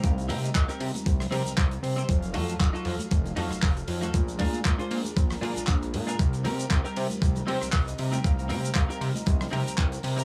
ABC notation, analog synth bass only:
X:1
M:4/4
L:1/16
Q:"Swing 16ths" 1/4=117
K:Cm
V:1 name="Analog synth bass" clef=bass
C,,2 C,2 C,, z C, z C,,2 C, C,, C,,2 C,2 | F,,,2 F,,2 F,,, z F,, z F,,,2 F,, F,,, F,,,2 F,,2 | B,,,2 B,,2 B,,, z B,, z B,,,2 B,, B,,, B,,,2 B,,2 | C,,2 C,2 C,, z C, z C,,2 C, C,, C,,2 C,2 |
C,,2 C,2 C,, z C, z C,,2 C, C,, C,,2 C,2 |]